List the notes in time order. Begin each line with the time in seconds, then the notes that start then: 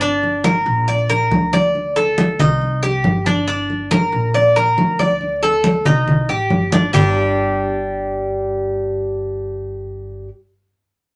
Already playing: G1
0.01 D4, high conga
0.23 high conga
0.44 A#4, high conga
0.66 A#1, high conga
0.88 D5, high conga
1.09 A#4, high conga
1.31 D2, high conga
1.53 D5, high conga
1.75 high conga
1.96 A4, high conga
2.18 high conga
2.39 C2 D#4, high conga, low conga
2.61 high conga
2.83 G4, high conga
3.04 G1, high conga
3.26 D4, high conga
3.48 D4
3.70 high conga
3.91 A#4, high conga
4.12 A#1, high conga
4.34 D5, high conga
4.56 A#4, high conga
4.77 D2, high conga
4.99 D5, high conga
5.21 high conga
5.42 A4, high conga
5.64 high conga
5.85 C2 D#4, high conga, low conga
6.08 high conga, low conga
6.29 A1 G4, high conga
6.50 G1, high conga
6.72 D4, high conga
6.93 G1 G3 D4 G4, low conga